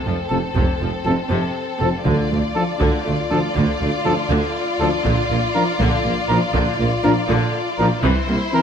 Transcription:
Already playing: violin section C4 A4
0.05 tuba F1, double bass section F1, cello section F2, viola section F3
0.29 tuba F1, double bass section F1, cello section F2, viola section C3, french horn section F3 C4, trumpet A4
0.55 tuba F1, double bass section F1, cello section F2, viola section C3, taiko
0.80 tuba F1, double bass section F1, cello section F2, viola section F3
1.05 tuba F1, double bass section F1, cello section F2, viola section C3, french horn section F3 C4, trumpet A4
1.30 tuba F1, double bass section F1, cello section F2, viola section C3
1.79 tuba F1, double bass section F1, cello section F2, viola section C3, french horn section F3 C4, trumpet A4
2.05 tuba D2, cello section D2, double bass section D2, viola section D3, timpani D3, violin section F4 D5, taiko
2.30 tuba D2, double bass section D2, cello section D2, viola section A3
2.55 french horn section F3 D4, trumpet A4
2.79 tuba D2, double bass section D2, cello section D2, viola section D3, taiko
3.05 tuba D2, double bass section D2, cello section D2, viola section A3
3.30 tuba D2, double bass section D2, cello section D2, viola section F3, french horn section F3 D4, trumpet A4
3.54 tuba D2, double bass section D2, cello section D2, viola section D3, taiko
3.80 double bass section D2, tuba D2, cello section D2, viola section A3
4.05 double bass section D2, tuba D2, cello section D2, viola section F3, french horn section F3 D4, trumpet A4
4.30 double bass section D2, tuba D2, cello section D2, viola section D3
4.80 cello section D2, tuba D2, double bass section D2, viola section F3, french horn section F3 D4, trumpet A4
5.05 tuba A#1, double bass section A#1, cello section A#2, viola section D3, taiko
5.30 tuba A#1, double bass section A#1, cello section A#2, viola section A#3
5.54 french horn section F3 D4, trumpet A#4
5.80 tuba A#1, double bass section A#1, cello section A#2, viola section D3, taiko
6.04 tuba A#1, double bass section A#1, cello section A#2, viola section A#3
6.29 tuba A#1, double bass section A#1, cello section A#2, viola section F3, french horn section F3 D4, trumpet A#4
6.54 double bass section A#1, tuba A#1, cello section A#2, viola section D3, taiko
6.79 tuba A#1, double bass section A#1, cello section A#2, viola section A#3
7.03 double bass section A#1, tuba A#1, cello section A#2, viola section F3, french horn section F3 D4, trumpet A#4
7.28 tuba A#1, double bass section A#1, cello section A#2, viola section D3
7.78 double bass section A#1, tuba A#1, cello section A#2, french horn section F3 D4, viola section F3, trumpet A#4
8.03 double bass section C2, tuba C2, cello section C3, viola section E3, violin section E4 C5, taiko
8.29 double bass section C2, tuba C2, cello section C3, viola section A#3
8.53 french horn section E3 C4, trumpet A#4

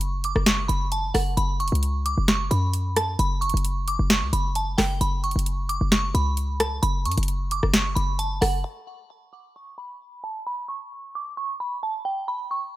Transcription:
Already playing: 808-style bass F#1, synth bell C#6
0.01 closed hi-hat
0.24 synth bell D6, closed hi-hat
0.36 808-style bass F#1, cross-stick
0.46 synth bell C#6, snare, closed hi-hat
0.68 808-style bass F#1, synth bell B5, closed hi-hat
0.92 synth bell A5, closed hi-hat
1.14 808-style bass F#1, synth bell F#5, cross-stick, open hi-hat
1.37 808-style bass F#1, synth bell B5, closed hi-hat
1.60 synth bell C#6, closed hi-hat
1.68 closed hi-hat
1.72 808-style bass C#2, closed hi-hat
1.83 closed hi-hat
2.06 synth bell D6, closed hi-hat
2.18 808-style bass F#1
2.28 synth bell C#6, snare, closed hi-hat
2.51 808-style bass F#2, synth bell B5, closed hi-hat
2.73 closed hi-hat
2.96 synth bell A5, cross-stick, closed hi-hat
3.19 808-style bass F#1, synth bell B5, closed hi-hat
3.41 synth bell C#6, closed hi-hat
3.50 closed hi-hat
3.54 808-style bass F#1, closed hi-hat
3.65 closed hi-hat
3.88 synth bell D6, closed hi-hat
3.99 808-style bass F#1
4.10 synth bell C#6, snare, closed hi-hat
4.22 808-style bass C#2
4.33 808-style bass F#1, synth bell B5, closed hi-hat
4.55 synth bell A5, closed hi-hat
4.78 808-style bass F#1, synth bell G5, cross-stick, snare, open hi-hat
5.01 808-style bass F#1, synth bell B5, closed hi-hat
5.24 synth bell C#6, closed hi-hat
5.31 closed hi-hat
5.36 808-style bass F#1, closed hi-hat
5.46 closed hi-hat
5.69 synth bell D6, closed hi-hat
5.81 808-style bass F#1
5.92 synth bell C#6, snare, closed hi-hat
6.15 808-style bass C#2, synth bell B5, closed hi-hat
6.37 closed hi-hat
6.60 synth bell A5, cross-stick, closed hi-hat
6.83 808-style bass F#1, synth bell B5, closed hi-hat
7.05 808-style bass F#2, synth bell C#6, closed hi-hat
7.12 closed hi-hat
7.18 808-style bass F#1, closed hi-hat
7.23 closed hi-hat
7.28 closed hi-hat
7.51 synth bell D6, closed hi-hat
7.63 808-style bass F#1, cross-stick
7.74 synth bell C#6, snare, closed hi-hat
7.95 808-style bass F#1, synth bell B5, closed hi-hat
8.19 synth bell A5, closed hi-hat
8.41 808-style bass F#1, synth bell F#5, cross-stick, open hi-hat
8.64 synth bell B5
8.87 synth bell C#6
9.33 synth bell D6
9.56 synth bell C#6
9.78 synth bell B5
10.24 synth bell A5
10.47 synth bell B5
10.68 synth bell C#6
11.15 synth bell D6
11.37 synth bell C#6
11.60 synth bell B5
11.83 synth bell A5
12.05 synth bell G5
12.28 synth bell B5
12.51 synth bell C#6

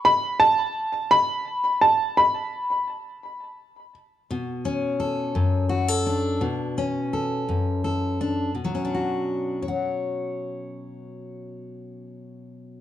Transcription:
0.05 upright piano B5
0.40 upright piano A5
1.11 upright piano B5
1.81 upright piano A5
2.17 upright piano B5
4.31 steel-string acoustic guitar B2
4.65 steel-string acoustic guitar C#4
5.00 steel-string acoustic guitar A4
5.35 steel-string acoustic guitar F#2
5.69 steel-string acoustic guitar F#4
5.88 steel-string acoustic guitar A4
6.06 steel-string acoustic guitar D4
6.41 steel-string acoustic guitar B2
6.78 steel-string acoustic guitar C#4
7.13 steel-string acoustic guitar A4
7.49 steel-string acoustic guitar F#2
7.84 steel-string acoustic guitar A4
8.21 steel-string acoustic guitar D4
8.55 steel-string acoustic guitar B2
8.65 steel-string acoustic guitar F#3
8.75 steel-string acoustic guitar C#4
8.85 steel-string acoustic guitar D4
8.95 steel-string acoustic guitar F#4
9.62 steel-string acoustic guitar C#5
9.68 steel-string acoustic guitar F#5

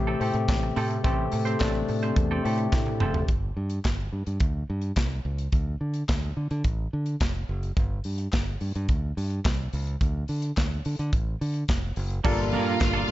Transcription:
Already playing: fingered electric bass A1, tonewheel organ C3 A3 G4, tine electric piano A3 C4 G4
0.07 clean electric guitar C4 G4 A4
0.20 fingered electric bass A2, tine electric piano A3 C4 G4, clean electric guitar C4 G4 A4, open hi-hat
0.33 fingered electric bass A2, muted clean electric guitar stroke, closed hi-hat
0.48 fingered electric bass A1, muted clean electric guitar stroke, kick, snare, clap, closed hi-hat
0.63 muted clean electric guitar stroke
0.76 fingered electric bass A2, clean electric guitar C4 G4 A4, open hi-hat
0.90 muted clean electric guitar stroke, closed hi-hat
1.04 fingered electric bass A1, tine electric piano A3 C4 G4, clean electric guitar C4 G4 A4, tonewheel organ A4, kick, closed hi-hat
1.18 muted clean electric guitar stroke
1.32 fingered electric bass A2, muted clean electric guitar stroke, open hi-hat
1.45 clean electric guitar C4 G4 C5, closed hi-hat
1.59 fingered electric bass A1, tine electric piano A3 C4 D4, clean electric guitar C4 G4 A4, kick, snare, clap, closed hi-hat
1.62 clap
1.74 muted clean electric guitar stroke
1.88 fingered electric bass A2, muted clean electric guitar stroke, open hi-hat
2.03 clean electric guitar C4 G4 C5, closed hi-hat
2.16 fingered electric bass E2, muted clean electric guitar stroke, kick, closed hi-hat
2.31 clean electric guitar C4 G4 A4
2.43 fingered electric bass A2, tine electric piano A3 C4 G4, clean electric guitar C4 G4 A4, open hi-hat
2.58 muted clean electric guitar stroke, closed hi-hat
2.73 fingered electric bass A2, muted clean electric guitar stroke, kick, snare, clap
2.86 muted clean electric guitar stroke, high tom
3.00 fingered electric bass F#1, clean electric guitar C4 G4 A4, mid tom
3.14 muted clean electric guitar stroke, floor tom
3.28 fingered electric bass G1, kick, closed hi-hat
3.57 fingered electric bass G2
3.70 closed hi-hat
3.84 fingered electric bass G1, kick, snare, clap, closed hi-hat
3.86 clap
4.13 fingered electric bass G2
4.26 fingered electric bass G2, closed hi-hat
4.40 fingered electric bass D2, kick, closed hi-hat
4.70 fingered electric bass G2
4.81 closed hi-hat
4.96 fingered electric bass C2, kick, snare, clap, closed hi-hat
4.98 clap
5.25 fingered electric bass C#2
5.38 closed hi-hat
5.52 fingered electric bass D2, kick, closed hi-hat
5.81 fingered electric bass D3
5.94 closed hi-hat
6.08 fingered electric bass D2, kick, snare, clap, closed hi-hat
6.10 clap
6.37 fingered electric bass D3
6.51 fingered electric bass D3, closed hi-hat
6.64 fingered electric bass A1, kick, closed hi-hat
6.93 fingered electric bass D3
7.06 closed hi-hat
7.20 fingered electric bass F1, kick, snare, clap, closed hi-hat
7.49 fingered electric bass F#1
7.63 closed hi-hat
7.77 fingered electric bass G1, kick, closed hi-hat
8.04 fingered electric bass G2, open hi-hat
8.18 closed hi-hat
8.32 fingered electric bass G1, kick, snare, clap, closed hi-hat
8.35 clap
8.61 fingered electric bass G2, open hi-hat
8.75 fingered electric bass G2, closed hi-hat
8.88 fingered electric bass D2, kick, closed hi-hat
9.17 fingered electric bass G2, open hi-hat
9.30 closed hi-hat
9.45 fingered electric bass C2, kick, snare, clap, closed hi-hat
9.47 clap
9.73 fingered electric bass C#2, open hi-hat
9.87 closed hi-hat
10.01 fingered electric bass D2, kick, closed hi-hat
10.28 fingered electric bass D3, open hi-hat
10.42 closed hi-hat
10.57 fingered electric bass D2, kick, snare, clap, closed hi-hat
10.59 clap
10.85 fingered electric bass D3, open hi-hat
10.99 fingered electric bass D3, closed hi-hat
11.13 fingered electric bass A1, kick, closed hi-hat
11.41 fingered electric bass D3, open hi-hat
11.54 closed hi-hat
11.68 fingered electric bass F1, kick, snare, clap, closed hi-hat
11.96 fingered electric bass F#1, open hi-hat
12.10 closed hi-hat
12.24 fingered electric bass G1, tonewheel organ A#2 A#3 F4, tine electric piano G3 D4 F4 A4 A#4, clean electric guitar A#3 F4 A4, string section F4 F5, kick, crash
12.51 fingered electric bass G2, clean electric guitar A#3 F4 A#4, open hi-hat
12.67 clean electric guitar A#3 F4 A#4
12.80 fingered electric bass G1, muted clean electric guitar stroke, kick, snare, clap, closed hi-hat
12.93 clean electric guitar A#3 F4 A4
13.08 muted clean electric guitar stroke

